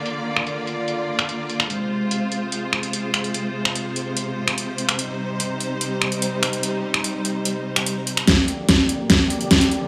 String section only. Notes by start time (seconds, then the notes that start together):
Already playing: D3 A#3 F4 D5
1.70 C3 G#3 C5
4.99 G3 D#4
8.27 D3 A#3 G4 D5